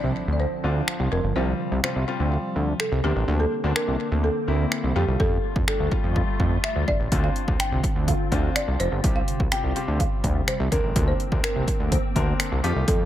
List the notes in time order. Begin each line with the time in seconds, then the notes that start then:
Already playing: D3 F3 C4 D4 E4 D5, impact
0.04 C2
0.28 D2
0.33 D5
0.40 C5
0.64 D2 C4 D4 F4
0.88 finger snap
1.00 C2
1.12 F1 A#4
1.24 G1
1.36 C2 C3 G3 C4 F4 C5
1.72 C2
1.83 G3 C4 F4 C5, finger snap
1.96 C2
2.08 G3 C4 F4
2.20 D2
2.56 D2
2.80 A4, finger snap
2.92 C2
3.04 D2 D3 A#3 C4 D4 G4
3.16 A1
3.28 D2
3.40 A4
3.64 D2 A#3 C4 D4
3.76 A#4, finger snap
3.88 C2
4.12 D2
4.24 A4
4.47 D2 A#3 C4 E4
4.72 finger snap
4.84 C2
4.96 F2 G3 A3 F4 G4
5.08 C2
5.20 F2 A4, kick
5.56 F2, kick
5.67 G3 A3 D4 A4, finger snap
5.80 D2
5.92 G3 A3 F4, kick
6.04 F2
6.16 kick
6.40 F2, kick
6.64 E5, finger snap
6.76 D2
6.88 G1 D5, kick
7.00 A1
7.11 D2 D3 C4 D4 F4, kick, closed hi-hat
7.24 F5
7.36 closed hi-hat
7.48 D2 C4 D4 F4, kick
7.60 G5, finger snap, closed hi-hat
7.72 C2
7.84 kick, closed hi-hat
7.96 D2
8.08 F5, kick, closed hi-hat
8.32 D2 C4 D4 F4, kick, closed hi-hat
8.56 D5, finger snap, closed hi-hat
8.68 C2
8.80 F1 C5, closed hi-hat
8.92 G1
9.04 C2 C3 G3 C4 F4 G4, kick, closed hi-hat
9.16 F5
9.28 closed hi-hat
9.40 C2, kick
9.52 C4 F4 G4 G5, finger snap, closed hi-hat
9.64 C2
9.76 C4 F4 G4, closed hi-hat
9.88 D2
10.00 F5, kick, closed hi-hat
10.24 D2, kick, closed hi-hat
10.48 C5, finger snap, closed hi-hat
10.60 C2
10.72 D2 D3 A#3 C4 D4 A#4, kick, closed hi-hat
10.84 A1
10.96 D2, kick, closed hi-hat
11.08 C5
11.20 closed hi-hat
11.32 D2 C4 D4 A#4, kick
11.44 A#4, finger snap, closed hi-hat
11.56 C2
11.68 kick, closed hi-hat
11.80 D2
11.92 C5, kick, closed hi-hat
12.16 D2 C4 D4 A#4, kick, closed hi-hat
12.40 finger snap, closed hi-hat
12.52 C2
12.63 F2 G3 A3 F4 G4, closed hi-hat
12.76 C2
12.88 F2 A4, kick, closed hi-hat